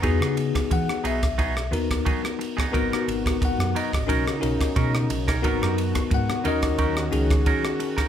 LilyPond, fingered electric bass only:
\new Staff \with { instrumentName = "Fingered electric bass" } { \clef bass \time 4/4 \key gis \minor \tempo 4 = 89 e,16 cis8 r16 e16 r16 b,,4 dis,8 r4 | gis,,16 r16 gis,,8. fis,16 r16 gis,,16 b,,16 r16 b,,16 r16 b,8 b,,8 | gis,,16 fis,8 r16 gis,16 r16 dis,4 cis,8 r4 | }